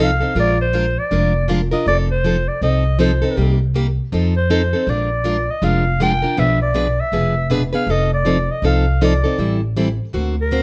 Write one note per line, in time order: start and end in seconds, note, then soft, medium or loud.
0.00 0.21 C2 medium
0.00 0.10 D#4 medium
0.00 0.10 A4 medium
0.00 0.36 F5 medium
0.20 0.35 C4 soft
0.20 0.36 D#4 soft
0.20 0.35 A4 soft
0.35 0.96 A#1 medium
0.35 0.57 F3 medium
0.35 0.57 G#3 medium
0.35 0.57 D4 medium
0.35 0.57 F4 medium
0.35 0.58 A#4 medium
0.40 0.59 D5 loud
0.61 1.00 C5 medium
0.73 0.85 F3 medium
0.73 0.85 G#3 medium
0.73 0.85 D4 medium
0.73 0.85 F4 medium
0.73 0.85 A#4 medium
0.99 1.50 D5 medium
1.11 1.71 F1 medium
1.11 1.32 F3 medium
1.11 1.32 G#3 medium
1.11 1.32 D4 medium
1.11 1.33 F4 medium
1.11 1.33 A#4 medium
1.48 1.60 F3 medium
1.48 1.60 G#3 medium
1.48 1.60 D4 medium
1.48 1.60 F4 medium
1.48 1.60 A#4 medium
1.71 1.87 D4 soft
1.71 1.86 F4 soft
1.71 1.86 A#4 medium
1.71 1.86 D#5 medium
1.86 2.47 F1 medium
1.86 2.08 F3 soft
1.86 2.08 C4 soft
1.86 2.08 D#4 medium
1.86 2.09 A4 medium
1.86 1.98 D5 medium
2.11 2.49 C5 medium
2.24 2.35 F3 medium
2.24 2.36 C4 medium
2.24 2.36 D#4 medium
2.24 2.36 A4 medium
2.48 2.62 D5 medium
2.61 3.22 C2 medium
2.61 2.83 F3 medium
2.61 2.83 C4 medium
2.61 2.83 D#4 medium
2.61 2.84 A4 medium
2.61 2.97 D#5 medium
2.99 3.10 F3 medium
2.99 3.11 C4 medium
2.99 3.11 D#4 medium
2.99 3.11 A4 medium
2.99 3.57 C5 medium
3.22 3.37 C4 soft
3.22 3.37 D#4 soft
3.22 3.36 A4 medium
3.37 3.97 C2 medium
3.37 3.58 C3 medium
3.37 3.58 G3 medium
3.37 3.58 A#3 medium
3.37 3.58 D#4 medium
3.37 3.58 G4 medium
3.74 3.86 C3 medium
3.74 3.86 G3 medium
3.74 3.86 A#3 medium
3.74 3.86 D#4 medium
3.74 3.86 G4 medium
4.12 4.72 F2 medium
4.12 4.33 F3 medium
4.12 4.33 C4 medium
4.12 4.34 D#4 medium
4.12 4.34 A4 medium
4.37 4.91 C5 medium
4.50 4.61 F3 medium
4.50 4.61 C4 medium
4.50 4.61 D#4 medium
4.50 4.61 A4 medium
4.73 4.88 C4 soft
4.73 4.88 D#4 soft
4.73 4.87 A4 soft
4.87 5.47 A#1 medium
4.87 5.09 F3 medium
4.87 5.09 G#3 medium
4.87 5.09 D4 medium
4.87 5.09 F4 medium
4.87 5.09 A#4 medium
4.87 5.52 D5 medium
5.24 5.36 F3 medium
5.24 5.36 G#3 medium
5.24 5.36 D4 medium
5.24 5.36 F4 medium
5.24 5.36 A#4 medium
5.51 5.66 D#5 medium
5.62 6.22 F1 medium
5.62 5.83 F3 medium
5.62 5.84 G#3 medium
5.62 5.84 D4 medium
5.62 5.84 F4 medium
5.62 5.84 A#4 medium
5.62 6.01 F5 medium
6.00 6.11 F3 medium
6.00 6.11 G#3 medium
6.00 6.12 D4 medium
6.00 6.12 F4 medium
6.00 6.12 A#4 medium
6.00 6.41 G5 medium
6.22 6.36 D4 soft
6.22 6.37 F4 soft
6.22 6.37 A#4 soft
6.37 6.98 B1 medium
6.37 6.58 B2 medium
6.37 6.58 F3 medium
6.37 6.59 B3 medium
6.37 6.59 D4 medium
6.37 6.59 G#4 medium
6.37 6.59 B4 medium
6.37 6.62 E5 loud
6.62 7.02 D5 medium
6.74 6.86 B2 medium
6.74 6.86 F3 medium
6.74 6.86 B3 medium
6.74 6.86 D4 medium
6.74 6.87 G#4 medium
6.74 6.87 B4 medium
7.01 7.52 E5 medium
7.12 7.73 F1 medium
7.12 7.34 B2 medium
7.12 7.34 F3 medium
7.12 7.34 B3 medium
7.12 7.34 D4 medium
7.12 7.34 G#4 medium
7.12 7.34 B4 medium
7.50 7.61 B2 medium
7.50 7.62 F3 medium
7.50 7.62 B3 medium
7.50 7.62 D4 medium
7.50 7.62 G#4 medium
7.50 7.62 B4 medium
7.73 7.88 B3 soft
7.73 7.88 D4 soft
7.73 7.88 G#4 soft
7.73 7.87 B4 medium
7.73 7.92 F5 medium
7.87 8.47 F1 medium
7.87 8.09 F3 medium
7.87 8.10 C4 medium
7.87 8.10 D#4 medium
7.87 8.10 A4 medium
7.91 8.13 D#5 medium
8.14 8.53 D5 medium
8.25 8.37 F3 medium
8.25 8.37 C4 medium
8.25 8.37 D#4 medium
8.25 8.37 A4 medium
8.51 8.65 D#5 medium
8.62 9.23 C2 medium
8.62 8.84 F3 medium
8.62 8.85 C4 medium
8.62 8.85 D#4 medium
8.62 8.85 A4 medium
8.62 9.00 F5 medium
9.01 9.12 F3 medium
9.01 9.12 C4 medium
9.01 9.13 D#4 medium
9.01 9.13 A4 medium
9.01 9.59 D5 medium
9.24 9.38 C4 soft
9.24 9.39 D#4 soft
9.24 9.38 A4 medium
9.38 9.99 A1 medium
9.38 9.60 E3 medium
9.38 9.60 G3 medium
9.38 9.60 C4 medium
9.38 9.60 E4 medium
9.38 9.60 A4 medium
9.77 9.88 E3 medium
9.77 9.88 G3 medium
9.77 9.88 C4 medium
9.77 9.88 E4 medium
9.77 9.88 A4 medium
10.13 10.63 D2 medium
10.13 10.34 D3 medium
10.13 10.35 A#3 medium
10.13 10.35 C4 medium
10.13 10.35 F#4 medium
10.13 10.35 C5 medium
10.41 10.63 A#4 medium
10.51 10.62 D3 medium
10.51 10.63 A#3 medium
10.51 10.63 C4 medium
10.51 10.63 F#4 medium
10.51 10.63 C5 medium